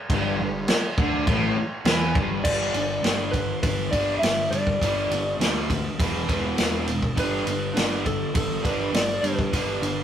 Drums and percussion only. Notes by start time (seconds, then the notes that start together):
0.10 kick, crash
0.68 snare, crash
0.98 kick
1.27 kick, crash
1.85 snare, crash
2.15 kick
2.45 kick, crash
2.74 ride
3.04 snare, ride
3.34 kick, ride
3.63 kick, ride
3.93 kick, ride
4.23 snare, ride
4.52 ride
4.67 kick
4.82 kick, ride
5.11 ride
5.41 snare, ride
5.70 kick, ride
6.00 kick, ride
6.29 kick, ride
6.58 snare, ride
6.87 ride
7.02 kick
7.17 kick, ride
7.47 ride
7.77 snare, ride
8.06 kick, ride
8.35 kick, ride
8.65 kick, ride
8.94 snare, ride
9.24 ride
9.39 kick
9.53 kick, ride
9.83 ride